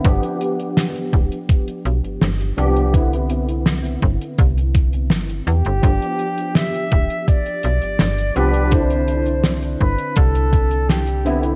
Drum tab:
HH |xxxxxx-xxxxxxxxx|xxxxxx-xxxxxxxxx|xxxxxx-xxxxxxxxx|xxxxxx-xxxxxxxxx|
SD |----o-------o---|----o-------o---|----o-------o---|----o-------o---|
BD |o-----o-o-------|o-----o-o-o-----|o-----o-o-------|o-----o-o-o-----|